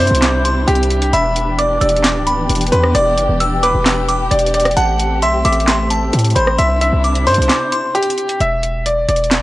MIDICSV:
0, 0, Header, 1, 6, 480
1, 0, Start_track
1, 0, Key_signature, 1, "minor"
1, 0, Tempo, 454545
1, 1194, Time_signature, 4, 2, 24, 8
1, 9950, End_track
2, 0, Start_track
2, 0, Title_t, "Synth bell"
2, 0, Program_c, 0, 98
2, 0, Note_on_c, 0, 84, 81
2, 222, Note_off_c, 0, 84, 0
2, 232, Note_on_c, 0, 86, 73
2, 462, Note_off_c, 0, 86, 0
2, 476, Note_on_c, 0, 84, 90
2, 703, Note_off_c, 0, 84, 0
2, 1195, Note_on_c, 0, 83, 108
2, 1646, Note_off_c, 0, 83, 0
2, 1673, Note_on_c, 0, 86, 79
2, 1902, Note_off_c, 0, 86, 0
2, 1910, Note_on_c, 0, 88, 81
2, 2141, Note_off_c, 0, 88, 0
2, 2155, Note_on_c, 0, 86, 78
2, 2383, Note_off_c, 0, 86, 0
2, 2395, Note_on_c, 0, 83, 86
2, 2846, Note_off_c, 0, 83, 0
2, 2873, Note_on_c, 0, 84, 82
2, 3102, Note_off_c, 0, 84, 0
2, 3112, Note_on_c, 0, 86, 101
2, 3565, Note_off_c, 0, 86, 0
2, 3595, Note_on_c, 0, 88, 86
2, 3823, Note_off_c, 0, 88, 0
2, 3831, Note_on_c, 0, 86, 87
2, 4061, Note_off_c, 0, 86, 0
2, 4074, Note_on_c, 0, 88, 78
2, 4302, Note_off_c, 0, 88, 0
2, 4314, Note_on_c, 0, 86, 86
2, 4992, Note_off_c, 0, 86, 0
2, 5034, Note_on_c, 0, 81, 98
2, 5486, Note_off_c, 0, 81, 0
2, 5518, Note_on_c, 0, 84, 98
2, 5744, Note_off_c, 0, 84, 0
2, 5753, Note_on_c, 0, 86, 84
2, 5982, Note_off_c, 0, 86, 0
2, 5993, Note_on_c, 0, 84, 93
2, 6222, Note_off_c, 0, 84, 0
2, 6236, Note_on_c, 0, 81, 82
2, 6687, Note_off_c, 0, 81, 0
2, 6711, Note_on_c, 0, 83, 81
2, 6941, Note_off_c, 0, 83, 0
2, 6952, Note_on_c, 0, 84, 95
2, 7405, Note_off_c, 0, 84, 0
2, 7436, Note_on_c, 0, 86, 88
2, 7663, Note_off_c, 0, 86, 0
2, 7675, Note_on_c, 0, 84, 81
2, 7903, Note_off_c, 0, 84, 0
2, 7915, Note_on_c, 0, 86, 70
2, 8143, Note_off_c, 0, 86, 0
2, 8156, Note_on_c, 0, 84, 90
2, 8383, Note_off_c, 0, 84, 0
2, 9950, End_track
3, 0, Start_track
3, 0, Title_t, "Grand piano"
3, 0, Program_c, 1, 0
3, 0, Note_on_c, 1, 72, 91
3, 672, Note_off_c, 1, 72, 0
3, 713, Note_on_c, 1, 67, 101
3, 1165, Note_off_c, 1, 67, 0
3, 1198, Note_on_c, 1, 76, 104
3, 1648, Note_off_c, 1, 76, 0
3, 1674, Note_on_c, 1, 74, 78
3, 1871, Note_off_c, 1, 74, 0
3, 1913, Note_on_c, 1, 74, 82
3, 2832, Note_off_c, 1, 74, 0
3, 2872, Note_on_c, 1, 71, 88
3, 3070, Note_off_c, 1, 71, 0
3, 3112, Note_on_c, 1, 74, 120
3, 3310, Note_off_c, 1, 74, 0
3, 3354, Note_on_c, 1, 74, 78
3, 3806, Note_off_c, 1, 74, 0
3, 3836, Note_on_c, 1, 71, 81
3, 4513, Note_off_c, 1, 71, 0
3, 4549, Note_on_c, 1, 74, 93
3, 4748, Note_off_c, 1, 74, 0
3, 4795, Note_on_c, 1, 74, 88
3, 4991, Note_off_c, 1, 74, 0
3, 5034, Note_on_c, 1, 78, 89
3, 5486, Note_off_c, 1, 78, 0
3, 5519, Note_on_c, 1, 76, 86
3, 5714, Note_off_c, 1, 76, 0
3, 5756, Note_on_c, 1, 76, 85
3, 6673, Note_off_c, 1, 76, 0
3, 6714, Note_on_c, 1, 72, 82
3, 6911, Note_off_c, 1, 72, 0
3, 6955, Note_on_c, 1, 76, 95
3, 7151, Note_off_c, 1, 76, 0
3, 7194, Note_on_c, 1, 76, 82
3, 7646, Note_off_c, 1, 76, 0
3, 7675, Note_on_c, 1, 72, 89
3, 8353, Note_off_c, 1, 72, 0
3, 8392, Note_on_c, 1, 67, 97
3, 8845, Note_off_c, 1, 67, 0
3, 8879, Note_on_c, 1, 76, 104
3, 9328, Note_off_c, 1, 76, 0
3, 9355, Note_on_c, 1, 74, 79
3, 9552, Note_off_c, 1, 74, 0
3, 9594, Note_on_c, 1, 74, 80
3, 9950, Note_off_c, 1, 74, 0
3, 9950, End_track
4, 0, Start_track
4, 0, Title_t, "String section"
4, 0, Program_c, 2, 48
4, 0, Note_on_c, 2, 48, 85
4, 0, Note_on_c, 2, 60, 76
4, 0, Note_on_c, 2, 62, 76
4, 0, Note_on_c, 2, 64, 91
4, 1157, Note_off_c, 2, 60, 0
4, 1176, Note_off_c, 2, 48, 0
4, 1176, Note_off_c, 2, 64, 0
4, 1193, Note_on_c, 2, 59, 78
4, 1193, Note_on_c, 2, 67, 94
4, 1194, Note_on_c, 2, 52, 80
4, 4993, Note_off_c, 2, 62, 0
4, 4995, Note_off_c, 2, 59, 0
4, 4996, Note_off_c, 2, 52, 0
4, 5035, Note_on_c, 2, 57, 83
4, 5036, Note_on_c, 2, 60, 75
4, 6912, Note_off_c, 2, 67, 0
4, 6936, Note_off_c, 2, 57, 0
4, 6953, Note_on_c, 2, 48, 86
4, 6953, Note_on_c, 2, 64, 92
4, 6954, Note_on_c, 2, 62, 75
4, 8837, Note_off_c, 2, 60, 0
4, 8855, Note_off_c, 2, 48, 0
4, 8855, Note_off_c, 2, 62, 0
4, 8855, Note_off_c, 2, 64, 0
4, 9950, End_track
5, 0, Start_track
5, 0, Title_t, "808-style bass"
5, 0, Program_c, 3, 38
5, 0, Note_on_c, 3, 43, 108
5, 108, Note_off_c, 3, 43, 0
5, 114, Note_on_c, 3, 36, 104
5, 691, Note_off_c, 3, 36, 0
5, 714, Note_on_c, 3, 36, 115
5, 1175, Note_off_c, 3, 36, 0
5, 1194, Note_on_c, 3, 28, 114
5, 1886, Note_off_c, 3, 28, 0
5, 1915, Note_on_c, 3, 28, 113
5, 2275, Note_on_c, 3, 26, 102
5, 2291, Note_off_c, 3, 28, 0
5, 2617, Note_off_c, 3, 26, 0
5, 2635, Note_on_c, 3, 28, 112
5, 2865, Note_off_c, 3, 28, 0
5, 2874, Note_on_c, 3, 40, 105
5, 3105, Note_off_c, 3, 40, 0
5, 3115, Note_on_c, 3, 28, 110
5, 3355, Note_on_c, 3, 30, 96
5, 3371, Note_off_c, 3, 28, 0
5, 3469, Note_off_c, 3, 30, 0
5, 3475, Note_on_c, 3, 28, 107
5, 3936, Note_off_c, 3, 28, 0
5, 3955, Note_on_c, 3, 28, 102
5, 4531, Note_off_c, 3, 28, 0
5, 4555, Note_on_c, 3, 28, 114
5, 5016, Note_off_c, 3, 28, 0
5, 5036, Note_on_c, 3, 33, 108
5, 5515, Note_on_c, 3, 35, 100
5, 5531, Note_off_c, 3, 33, 0
5, 5743, Note_off_c, 3, 35, 0
5, 5755, Note_on_c, 3, 33, 107
5, 6446, Note_off_c, 3, 33, 0
5, 6476, Note_on_c, 3, 45, 116
5, 6706, Note_off_c, 3, 45, 0
5, 6715, Note_on_c, 3, 33, 105
5, 6945, Note_off_c, 3, 33, 0
5, 6956, Note_on_c, 3, 36, 115
5, 7301, Note_off_c, 3, 36, 0
5, 7315, Note_on_c, 3, 36, 109
5, 7675, Note_on_c, 3, 43, 103
5, 7691, Note_off_c, 3, 36, 0
5, 7789, Note_off_c, 3, 43, 0
5, 7795, Note_on_c, 3, 36, 100
5, 7910, Note_off_c, 3, 36, 0
5, 8875, Note_on_c, 3, 28, 110
5, 9566, Note_off_c, 3, 28, 0
5, 9595, Note_on_c, 3, 28, 105
5, 9950, Note_off_c, 3, 28, 0
5, 9950, End_track
6, 0, Start_track
6, 0, Title_t, "Drums"
6, 0, Note_on_c, 9, 46, 54
6, 76, Note_on_c, 9, 42, 61
6, 101, Note_off_c, 9, 46, 0
6, 156, Note_off_c, 9, 42, 0
6, 156, Note_on_c, 9, 42, 77
6, 233, Note_on_c, 9, 39, 94
6, 235, Note_off_c, 9, 42, 0
6, 235, Note_on_c, 9, 38, 119
6, 235, Note_on_c, 9, 42, 73
6, 339, Note_off_c, 9, 39, 0
6, 341, Note_off_c, 9, 38, 0
6, 341, Note_off_c, 9, 42, 0
6, 475, Note_on_c, 9, 42, 72
6, 581, Note_off_c, 9, 42, 0
6, 715, Note_on_c, 9, 42, 67
6, 795, Note_off_c, 9, 42, 0
6, 795, Note_on_c, 9, 42, 69
6, 875, Note_off_c, 9, 42, 0
6, 875, Note_on_c, 9, 42, 70
6, 955, Note_off_c, 9, 42, 0
6, 955, Note_on_c, 9, 42, 60
6, 1060, Note_off_c, 9, 42, 0
6, 1075, Note_on_c, 9, 42, 61
6, 1181, Note_off_c, 9, 42, 0
6, 1195, Note_on_c, 9, 42, 81
6, 1300, Note_off_c, 9, 42, 0
6, 1435, Note_on_c, 9, 42, 69
6, 1541, Note_off_c, 9, 42, 0
6, 1675, Note_on_c, 9, 42, 69
6, 1781, Note_off_c, 9, 42, 0
6, 1915, Note_on_c, 9, 42, 73
6, 1995, Note_off_c, 9, 42, 0
6, 1995, Note_on_c, 9, 42, 57
6, 2075, Note_off_c, 9, 42, 0
6, 2075, Note_on_c, 9, 42, 44
6, 2152, Note_on_c, 9, 39, 94
6, 2154, Note_off_c, 9, 42, 0
6, 2154, Note_on_c, 9, 38, 123
6, 2154, Note_on_c, 9, 42, 72
6, 2258, Note_off_c, 9, 39, 0
6, 2260, Note_off_c, 9, 38, 0
6, 2260, Note_off_c, 9, 42, 0
6, 2394, Note_on_c, 9, 42, 74
6, 2500, Note_off_c, 9, 42, 0
6, 2635, Note_on_c, 9, 42, 81
6, 2695, Note_off_c, 9, 42, 0
6, 2695, Note_on_c, 9, 42, 70
6, 2755, Note_off_c, 9, 42, 0
6, 2755, Note_on_c, 9, 42, 60
6, 2815, Note_off_c, 9, 42, 0
6, 2815, Note_on_c, 9, 42, 47
6, 2875, Note_off_c, 9, 42, 0
6, 2875, Note_on_c, 9, 42, 70
6, 2980, Note_off_c, 9, 42, 0
6, 2994, Note_on_c, 9, 37, 92
6, 3100, Note_off_c, 9, 37, 0
6, 3114, Note_on_c, 9, 42, 81
6, 3220, Note_off_c, 9, 42, 0
6, 3354, Note_on_c, 9, 42, 68
6, 3460, Note_off_c, 9, 42, 0
6, 3594, Note_on_c, 9, 42, 70
6, 3700, Note_off_c, 9, 42, 0
6, 3835, Note_on_c, 9, 42, 73
6, 3940, Note_off_c, 9, 42, 0
6, 4072, Note_on_c, 9, 39, 93
6, 4074, Note_on_c, 9, 38, 119
6, 4074, Note_on_c, 9, 42, 72
6, 4178, Note_off_c, 9, 39, 0
6, 4180, Note_off_c, 9, 38, 0
6, 4180, Note_off_c, 9, 42, 0
6, 4315, Note_on_c, 9, 42, 74
6, 4420, Note_off_c, 9, 42, 0
6, 4554, Note_on_c, 9, 42, 82
6, 4634, Note_off_c, 9, 42, 0
6, 4634, Note_on_c, 9, 42, 66
6, 4714, Note_off_c, 9, 42, 0
6, 4714, Note_on_c, 9, 42, 48
6, 4794, Note_off_c, 9, 42, 0
6, 4794, Note_on_c, 9, 42, 72
6, 4854, Note_off_c, 9, 42, 0
6, 4854, Note_on_c, 9, 42, 63
6, 4914, Note_off_c, 9, 42, 0
6, 4914, Note_on_c, 9, 37, 95
6, 4914, Note_on_c, 9, 42, 53
6, 4975, Note_off_c, 9, 42, 0
6, 4975, Note_on_c, 9, 42, 44
6, 5019, Note_off_c, 9, 37, 0
6, 5034, Note_off_c, 9, 42, 0
6, 5034, Note_on_c, 9, 42, 78
6, 5140, Note_off_c, 9, 42, 0
6, 5275, Note_on_c, 9, 42, 70
6, 5381, Note_off_c, 9, 42, 0
6, 5515, Note_on_c, 9, 42, 70
6, 5620, Note_off_c, 9, 42, 0
6, 5754, Note_on_c, 9, 42, 75
6, 5834, Note_off_c, 9, 42, 0
6, 5834, Note_on_c, 9, 42, 59
6, 5914, Note_off_c, 9, 42, 0
6, 5914, Note_on_c, 9, 42, 44
6, 5992, Note_on_c, 9, 39, 91
6, 5994, Note_off_c, 9, 42, 0
6, 5994, Note_on_c, 9, 38, 122
6, 5994, Note_on_c, 9, 42, 72
6, 6098, Note_off_c, 9, 39, 0
6, 6100, Note_off_c, 9, 38, 0
6, 6100, Note_off_c, 9, 42, 0
6, 6235, Note_on_c, 9, 42, 75
6, 6340, Note_off_c, 9, 42, 0
6, 6475, Note_on_c, 9, 42, 83
6, 6534, Note_off_c, 9, 42, 0
6, 6534, Note_on_c, 9, 42, 70
6, 6595, Note_off_c, 9, 42, 0
6, 6595, Note_on_c, 9, 42, 58
6, 6655, Note_off_c, 9, 42, 0
6, 6655, Note_on_c, 9, 42, 49
6, 6715, Note_off_c, 9, 42, 0
6, 6715, Note_on_c, 9, 42, 71
6, 6821, Note_off_c, 9, 42, 0
6, 6835, Note_on_c, 9, 37, 93
6, 6940, Note_off_c, 9, 37, 0
6, 6954, Note_on_c, 9, 42, 81
6, 7060, Note_off_c, 9, 42, 0
6, 7195, Note_on_c, 9, 42, 69
6, 7300, Note_off_c, 9, 42, 0
6, 7434, Note_on_c, 9, 42, 44
6, 7540, Note_off_c, 9, 42, 0
6, 7555, Note_on_c, 9, 42, 68
6, 7660, Note_off_c, 9, 42, 0
6, 7675, Note_on_c, 9, 42, 44
6, 7675, Note_on_c, 9, 46, 56
6, 7755, Note_off_c, 9, 42, 0
6, 7755, Note_on_c, 9, 42, 58
6, 7781, Note_off_c, 9, 46, 0
6, 7835, Note_off_c, 9, 42, 0
6, 7835, Note_on_c, 9, 42, 75
6, 7913, Note_on_c, 9, 39, 92
6, 7915, Note_off_c, 9, 42, 0
6, 7915, Note_on_c, 9, 38, 121
6, 7915, Note_on_c, 9, 42, 72
6, 8018, Note_off_c, 9, 39, 0
6, 8020, Note_off_c, 9, 38, 0
6, 8020, Note_off_c, 9, 42, 0
6, 8155, Note_on_c, 9, 42, 75
6, 8260, Note_off_c, 9, 42, 0
6, 8395, Note_on_c, 9, 42, 69
6, 8475, Note_off_c, 9, 42, 0
6, 8475, Note_on_c, 9, 42, 67
6, 8555, Note_off_c, 9, 42, 0
6, 8555, Note_on_c, 9, 42, 68
6, 8635, Note_off_c, 9, 42, 0
6, 8635, Note_on_c, 9, 42, 61
6, 8740, Note_off_c, 9, 42, 0
6, 8755, Note_on_c, 9, 42, 61
6, 8861, Note_off_c, 9, 42, 0
6, 8875, Note_on_c, 9, 42, 78
6, 8981, Note_off_c, 9, 42, 0
6, 9115, Note_on_c, 9, 42, 68
6, 9221, Note_off_c, 9, 42, 0
6, 9355, Note_on_c, 9, 42, 68
6, 9461, Note_off_c, 9, 42, 0
6, 9595, Note_on_c, 9, 42, 70
6, 9675, Note_off_c, 9, 42, 0
6, 9675, Note_on_c, 9, 42, 56
6, 9756, Note_off_c, 9, 42, 0
6, 9756, Note_on_c, 9, 42, 42
6, 9833, Note_on_c, 9, 39, 89
6, 9835, Note_off_c, 9, 42, 0
6, 9835, Note_on_c, 9, 38, 115
6, 9835, Note_on_c, 9, 42, 69
6, 9939, Note_off_c, 9, 39, 0
6, 9941, Note_off_c, 9, 38, 0
6, 9941, Note_off_c, 9, 42, 0
6, 9950, End_track
0, 0, End_of_file